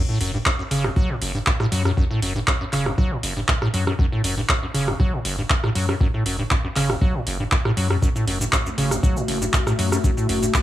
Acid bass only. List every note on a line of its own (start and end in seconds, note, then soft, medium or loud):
0.09 0.19 A2 medium
0.21 0.32 F#2 medium
0.34 0.38 G2 medium
0.46 0.50 F#2 medium
0.59 0.63 F#2 medium
0.71 0.86 C#3 loud
0.84 0.91 E2 medium
0.96 1.11 F#3 loud
1.10 1.16 A2 loud
1.22 1.33 F#1 medium
1.35 1.39 G2 medium
1.47 1.51 F#2 medium
1.60 1.67 A2 loud
1.72 1.83 F#3 medium
1.85 1.92 F#2 medium
1.97 2.05 F#2 loud
2.11 2.20 A2 medium
2.22 2.33 F#2 medium
2.36 2.40 G2 medium
2.48 2.52 F#2 medium
2.61 2.65 F#2 medium
2.73 2.88 C#3 loud
2.86 2.93 E2 medium
2.98 3.13 F#3 loud
3.11 3.18 A2 medium
3.23 3.34 F#1 medium
3.37 3.41 G2 medium
3.48 3.53 F#2 medium
3.62 3.68 A2 loud
3.74 3.85 F#3 medium
3.87 3.94 F#2 medium
3.99 4.06 F#2 loud
4.12 4.22 A2 medium
4.24 4.35 F#2 medium
4.37 4.41 G2 medium
4.49 4.54 F#2 medium
4.63 4.67 F#2 medium
4.74 4.89 C#3 loud
4.88 4.94 E2 medium
5.00 5.15 F#3 loud
5.13 5.20 A2 loud
5.25 5.36 F#1 medium
5.38 5.42 G2 medium
5.50 5.55 F#2 medium
5.63 5.70 A2 loud
5.75 5.86 F#3 medium
5.89 5.95 F#2 medium
6.01 6.08 F#2 loud
6.14 6.24 A2 medium
6.26 6.37 F#2 medium
6.39 6.43 G2 medium
6.51 6.55 F#2 medium
6.64 6.68 F#2 medium
6.76 6.91 C#3 loud
6.90 6.96 E2 medium
7.01 7.16 F#3 loud
7.15 7.21 A2 loud
7.27 7.38 F#1 medium
7.40 7.44 G2 medium
7.52 7.56 F#2 medium
7.65 7.72 A2 loud
7.77 7.88 F#3 medium
7.90 7.97 F#2 medium
8.02 8.10 F#2 loud
8.16 8.25 A2 medium
8.28 8.39 F#2 medium
8.41 8.45 G2 medium
8.53 8.57 F#2 medium
8.66 8.70 F#2 medium
8.78 8.93 C#3 loud
8.91 8.98 E2 medium
9.03 9.18 F#3 loud
9.17 9.23 A2 loud
9.28 9.39 F#1 medium
9.42 9.46 G2 medium
9.53 9.58 F#2 medium
9.67 9.73 A2 loud
9.79 9.90 F#3 medium
9.92 9.99 F#2 medium
10.04 10.11 F#2 loud
10.17 10.27 A2 medium
10.29 10.40 F#2 medium
10.42 10.46 G2 medium
10.54 10.59 F#2 medium